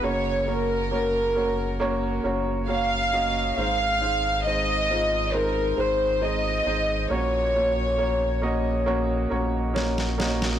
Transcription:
<<
  \new Staff \with { instrumentName = "Violin section" } { \time 4/4 \key ges \major \tempo 4 = 68 des''8 bes'2 r8 f''4 | f''4 ees''4 bes'8 c''8 ees''4 | des''2 r2 | }
  \new Staff \with { instrumentName = "Upright piano" } { \time 4/4 \key ges \major <bes des' ges' des''>8 <bes des' ges' des''>8 <bes des' ges' des''>8 <bes des' ges' des''>8 <bes des' ges' des''>8 <bes des' ges' des''>8 <bes des' ges' des''>8 <bes des' ges' ees''>8 | <aes c' ees' c''>8 <aes c' ees' c''>8 <aes c' ees' c''>8 <aes c' ees' f'>8 <aes c' ees' c''>8 <aes c' ees' c''>8 <aes c' ees' c''>8 <aes c' ees' c''>8 | <bes des' ges' des''>8 <bes des' ges' des''>8 <bes des' ges' des''>8 <bes des' ges' ees''>8 <bes des' ges' des''>8 <bes des' ges' des''>8 <bes des' ges' des''>8 <bes des' ges' ees''>8 | }
  \new Staff \with { instrumentName = "Upright piano" } { \clef bass \time 4/4 \key ges \major des4. r2 r8 | <aes, ees>4. r2 r8 | bes,4. r2 r8 | }
  \new Staff \with { instrumentName = "Sub bass" } { \clef bass \time 4/4 \key ges \major ges,,2~ ges,,8 ges,,4. | aes,,2~ aes,,8 aes,,4 aes,,8 | bes,,2~ bes,,8 bes,,4. | }
  \new DrumStaff \with { instrumentName = "Drums" } \drummode { \time 4/4 r4 r4 r4 r4 | r4 r4 r4 r4 | r4 r4 r4 sn16 sn16 sn16 sn16 | }
>>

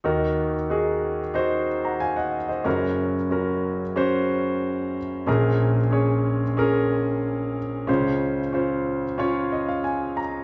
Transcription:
<<
  \new Staff \with { instrumentName = "Grand piano" } { \time 4/4 \key ees \dorian \tempo 4 = 92 << { r2 r8. <ges'' bes''>16 <f'' aes''>16 <ees'' ges''>8 <c'' ees''>16~ | <c'' ees''>16 r2. r8. | r1 | r2 r8 ees''16 f''16 aes''8 bes''8 | } \\ { <ees' ges' bes'>8. r16 <ees' ges' aes'>8. r16 <ees' ges' c''>4. r8 | <des' ges' bes'>8. r16 <des' ges' bes'>8. r16 <des' ges' c''>4. r8 | <des' aes' bes'>8. r16 <des' aes' des''>8. r16 <des' aes' bes'>4. r8 | <des' f' c''>8. r16 <des' f' c''>8. r16 <des' f' des''>4. r8 | } >> }
  \new Staff \with { instrumentName = "Grand piano" } { \clef bass \time 4/4 \key ees \dorian <ees, ees>1 | <ges,, ges,>1 | <bes,, bes,>1 | <des, des>1 | }
>>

